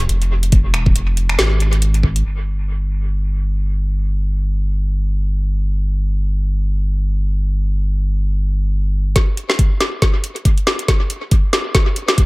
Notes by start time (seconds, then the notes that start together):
0.00 closed hi-hat
0.09 F1, closed hi-hat
0.22 closed hi-hat
0.43 closed hi-hat
0.52 kick, closed hi-hat
0.69 E1
0.74 finger snap, closed hi-hat
0.86 kick
0.96 F1, closed hi-hat
1.17 closed hi-hat
1.29 finger snap
1.39 G#1, snare, closed hi-hat
1.60 closed hi-hat
1.73 closed hi-hat
1.82 closed hi-hat
1.94 closed hi-hat
2.03 kick
2.16 closed hi-hat
2.25 G1
9.16 kick, snare, closed hi-hat
9.37 closed hi-hat
9.50 snare
9.59 kick, closed hi-hat
9.80 snare, closed hi-hat
10.02 kick, snare, closed hi-hat
10.24 closed hi-hat
10.36 closed hi-hat
10.45 kick, closed hi-hat
10.58 closed hi-hat
10.67 snare
10.79 closed hi-hat
10.88 kick, snare, closed hi-hat
11.10 closed hi-hat
11.31 kick, closed hi-hat
11.53 snare, closed hi-hat
11.75 kick, snare, closed hi-hat
11.96 closed hi-hat
12.08 snare, closed hi-hat
12.18 kick, closed hi-hat